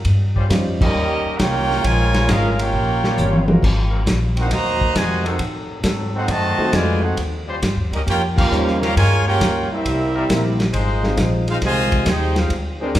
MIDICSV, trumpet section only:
0, 0, Header, 1, 2, 480
1, 0, Start_track
1, 0, Key_signature, -3, "major"
1, 0, Tempo, 444774
1, 64, Time_signature, 4, 2, 24, 8
1, 14024, End_track
2, 0, Start_track
2, 0, Title_t, "Trumpet section"
2, 0, Program_c, 0, 61
2, 880, Note_on_c, 0, 67, 89
2, 882, Note_on_c, 0, 75, 93
2, 893, Note_on_c, 0, 61, 89
2, 893, Note_on_c, 0, 70, 89
2, 1465, Note_off_c, 0, 67, 0
2, 1466, Note_off_c, 0, 75, 0
2, 1472, Note_off_c, 0, 61, 0
2, 1472, Note_off_c, 0, 70, 0
2, 1492, Note_on_c, 0, 65, 93
2, 1494, Note_on_c, 0, 73, 92
2, 1494, Note_on_c, 0, 79, 111
2, 1497, Note_on_c, 0, 70, 94
2, 1978, Note_off_c, 0, 65, 0
2, 1979, Note_off_c, 0, 73, 0
2, 1979, Note_off_c, 0, 79, 0
2, 1981, Note_off_c, 0, 70, 0
2, 1993, Note_on_c, 0, 70, 111
2, 2000, Note_on_c, 0, 65, 110
2, 2001, Note_on_c, 0, 80, 126
2, 2002, Note_on_c, 0, 73, 105
2, 2469, Note_off_c, 0, 70, 0
2, 2472, Note_off_c, 0, 65, 0
2, 2473, Note_off_c, 0, 73, 0
2, 2473, Note_off_c, 0, 80, 0
2, 2489, Note_on_c, 0, 70, 93
2, 2491, Note_on_c, 0, 68, 92
2, 2493, Note_on_c, 0, 77, 108
2, 2495, Note_on_c, 0, 61, 91
2, 2682, Note_off_c, 0, 77, 0
2, 2695, Note_on_c, 0, 77, 66
2, 2701, Note_off_c, 0, 70, 0
2, 2702, Note_off_c, 0, 68, 0
2, 2704, Note_off_c, 0, 61, 0
2, 2795, Note_off_c, 0, 77, 0
2, 2800, Note_on_c, 0, 70, 85
2, 2806, Note_on_c, 0, 73, 86
2, 2806, Note_on_c, 0, 79, 101
2, 2809, Note_on_c, 0, 65, 92
2, 3755, Note_off_c, 0, 70, 0
2, 3758, Note_off_c, 0, 73, 0
2, 3758, Note_off_c, 0, 79, 0
2, 3760, Note_off_c, 0, 65, 0
2, 4729, Note_on_c, 0, 63, 83
2, 4732, Note_on_c, 0, 78, 96
2, 4733, Note_on_c, 0, 70, 87
2, 4738, Note_on_c, 0, 72, 82
2, 4862, Note_off_c, 0, 63, 0
2, 4864, Note_off_c, 0, 78, 0
2, 4865, Note_off_c, 0, 70, 0
2, 4868, Note_off_c, 0, 72, 0
2, 4872, Note_on_c, 0, 82, 126
2, 4879, Note_on_c, 0, 66, 97
2, 4880, Note_on_c, 0, 75, 108
2, 4881, Note_on_c, 0, 72, 108
2, 5343, Note_off_c, 0, 66, 0
2, 5343, Note_off_c, 0, 72, 0
2, 5343, Note_off_c, 0, 75, 0
2, 5347, Note_off_c, 0, 82, 0
2, 5356, Note_on_c, 0, 66, 83
2, 5356, Note_on_c, 0, 72, 92
2, 5356, Note_on_c, 0, 75, 92
2, 5356, Note_on_c, 0, 80, 105
2, 5674, Note_off_c, 0, 72, 0
2, 5676, Note_off_c, 0, 80, 0
2, 5677, Note_off_c, 0, 66, 0
2, 5677, Note_off_c, 0, 75, 0
2, 5681, Note_on_c, 0, 63, 68
2, 5686, Note_on_c, 0, 70, 69
2, 5687, Note_on_c, 0, 72, 73
2, 5694, Note_on_c, 0, 78, 83
2, 5828, Note_off_c, 0, 63, 0
2, 5831, Note_off_c, 0, 70, 0
2, 5831, Note_off_c, 0, 72, 0
2, 5835, Note_off_c, 0, 78, 0
2, 6643, Note_on_c, 0, 69, 87
2, 6649, Note_on_c, 0, 63, 87
2, 6651, Note_on_c, 0, 72, 88
2, 6655, Note_on_c, 0, 78, 98
2, 6779, Note_off_c, 0, 69, 0
2, 6782, Note_off_c, 0, 63, 0
2, 6783, Note_off_c, 0, 72, 0
2, 6785, Note_off_c, 0, 78, 0
2, 6798, Note_on_c, 0, 66, 102
2, 6799, Note_on_c, 0, 75, 104
2, 6802, Note_on_c, 0, 81, 125
2, 6803, Note_on_c, 0, 72, 105
2, 7270, Note_off_c, 0, 66, 0
2, 7271, Note_off_c, 0, 75, 0
2, 7272, Note_off_c, 0, 72, 0
2, 7272, Note_off_c, 0, 81, 0
2, 7274, Note_on_c, 0, 65, 90
2, 7279, Note_on_c, 0, 71, 90
2, 7282, Note_on_c, 0, 74, 88
2, 7282, Note_on_c, 0, 80, 102
2, 7584, Note_on_c, 0, 69, 72
2, 7586, Note_on_c, 0, 63, 73
2, 7586, Note_on_c, 0, 72, 73
2, 7586, Note_on_c, 0, 78, 86
2, 7595, Note_off_c, 0, 65, 0
2, 7597, Note_off_c, 0, 71, 0
2, 7599, Note_off_c, 0, 74, 0
2, 7599, Note_off_c, 0, 80, 0
2, 7739, Note_off_c, 0, 69, 0
2, 7740, Note_off_c, 0, 63, 0
2, 7740, Note_off_c, 0, 72, 0
2, 7740, Note_off_c, 0, 78, 0
2, 8571, Note_on_c, 0, 70, 74
2, 8572, Note_on_c, 0, 67, 79
2, 8573, Note_on_c, 0, 61, 75
2, 8578, Note_on_c, 0, 75, 91
2, 8635, Note_off_c, 0, 70, 0
2, 8636, Note_off_c, 0, 61, 0
2, 8636, Note_off_c, 0, 67, 0
2, 8640, Note_off_c, 0, 75, 0
2, 8718, Note_on_c, 0, 73, 94
2, 8728, Note_on_c, 0, 70, 92
2, 8733, Note_on_c, 0, 65, 96
2, 8734, Note_on_c, 0, 79, 106
2, 8862, Note_off_c, 0, 73, 0
2, 8870, Note_off_c, 0, 70, 0
2, 8873, Note_off_c, 0, 65, 0
2, 8874, Note_off_c, 0, 79, 0
2, 9019, Note_on_c, 0, 61, 87
2, 9024, Note_on_c, 0, 77, 109
2, 9028, Note_on_c, 0, 67, 91
2, 9031, Note_on_c, 0, 70, 88
2, 9470, Note_off_c, 0, 61, 0
2, 9472, Note_off_c, 0, 77, 0
2, 9474, Note_off_c, 0, 67, 0
2, 9476, Note_off_c, 0, 70, 0
2, 9521, Note_on_c, 0, 73, 85
2, 9522, Note_on_c, 0, 67, 93
2, 9522, Note_on_c, 0, 77, 94
2, 9523, Note_on_c, 0, 82, 113
2, 9651, Note_off_c, 0, 73, 0
2, 9663, Note_on_c, 0, 70, 108
2, 9663, Note_on_c, 0, 73, 94
2, 9666, Note_on_c, 0, 80, 117
2, 9668, Note_off_c, 0, 67, 0
2, 9668, Note_off_c, 0, 77, 0
2, 9668, Note_off_c, 0, 82, 0
2, 9671, Note_on_c, 0, 65, 99
2, 9966, Note_off_c, 0, 70, 0
2, 9967, Note_off_c, 0, 73, 0
2, 9968, Note_off_c, 0, 80, 0
2, 9970, Note_off_c, 0, 65, 0
2, 10005, Note_on_c, 0, 70, 90
2, 10006, Note_on_c, 0, 79, 118
2, 10007, Note_on_c, 0, 73, 95
2, 10011, Note_on_c, 0, 65, 99
2, 10443, Note_off_c, 0, 70, 0
2, 10444, Note_off_c, 0, 73, 0
2, 10444, Note_off_c, 0, 79, 0
2, 10447, Note_off_c, 0, 65, 0
2, 10482, Note_on_c, 0, 67, 80
2, 10484, Note_on_c, 0, 70, 76
2, 10486, Note_on_c, 0, 76, 98
2, 10488, Note_on_c, 0, 60, 82
2, 11435, Note_off_c, 0, 67, 0
2, 11436, Note_off_c, 0, 70, 0
2, 11436, Note_off_c, 0, 76, 0
2, 11438, Note_off_c, 0, 60, 0
2, 12408, Note_on_c, 0, 77, 93
2, 12411, Note_on_c, 0, 68, 82
2, 12412, Note_on_c, 0, 72, 87
2, 12416, Note_on_c, 0, 63, 79
2, 12472, Note_off_c, 0, 77, 0
2, 12475, Note_off_c, 0, 68, 0
2, 12475, Note_off_c, 0, 72, 0
2, 12478, Note_off_c, 0, 63, 0
2, 12563, Note_on_c, 0, 80, 108
2, 12570, Note_on_c, 0, 72, 113
2, 12570, Note_on_c, 0, 75, 101
2, 12578, Note_on_c, 0, 65, 110
2, 12999, Note_off_c, 0, 80, 0
2, 13002, Note_off_c, 0, 72, 0
2, 13003, Note_off_c, 0, 75, 0
2, 13007, Note_off_c, 0, 65, 0
2, 13049, Note_on_c, 0, 79, 96
2, 13052, Note_on_c, 0, 68, 92
2, 13053, Note_on_c, 0, 63, 97
2, 13055, Note_on_c, 0, 72, 91
2, 13356, Note_off_c, 0, 63, 0
2, 13357, Note_off_c, 0, 68, 0
2, 13362, Note_off_c, 0, 79, 0
2, 13365, Note_off_c, 0, 72, 0
2, 13368, Note_on_c, 0, 63, 75
2, 13369, Note_on_c, 0, 68, 74
2, 13375, Note_on_c, 0, 77, 86
2, 13381, Note_on_c, 0, 72, 73
2, 13511, Note_off_c, 0, 63, 0
2, 13511, Note_off_c, 0, 68, 0
2, 13514, Note_off_c, 0, 77, 0
2, 13517, Note_off_c, 0, 72, 0
2, 14024, End_track
0, 0, End_of_file